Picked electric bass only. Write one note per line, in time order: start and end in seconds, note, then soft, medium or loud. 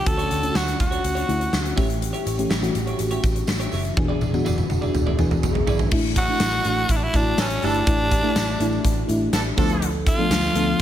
0.06 0.24 D2 loud
0.31 0.49 D2 medium
0.55 0.73 D2 medium
0.80 0.98 D2 medium
1.04 1.22 D2 loud
1.29 1.46 D2 loud
1.53 1.71 D2 medium
1.77 2.13 A1 loud
2.26 2.44 A1 medium
2.51 2.68 A1 medium
2.75 2.93 A1 loud
3.00 3.17 A1 loud
3.24 3.41 A1 loud
3.49 3.66 A1 medium
3.73 3.90 F#1 medium
3.97 4.15 E1 loud
4.21 4.39 E1 loud
4.46 4.63 E1 loud
4.70 4.88 E1 loud
4.94 5.12 E1 loud
5.19 5.37 E1 medium
5.43 5.61 E1 loud
5.67 5.85 G#1 medium
5.92 6.27 A1 loud
6.41 6.58 A1 loud
6.65 6.83 A1 medium
6.89 7.07 A1 loud
7.14 7.31 A1 loud
7.38 7.56 A1 loud
7.63 7.81 G1 medium
7.87 8.22 A1 loud
8.36 8.54 A1 loud
8.60 8.78 A1 loud
8.85 9.02 A1 loud
9.09 9.27 A1 loud
9.33 9.51 A1 loud
9.58 10.10 D2 loud
10.30 10.48 D2 loud
10.55 10.73 D2 loud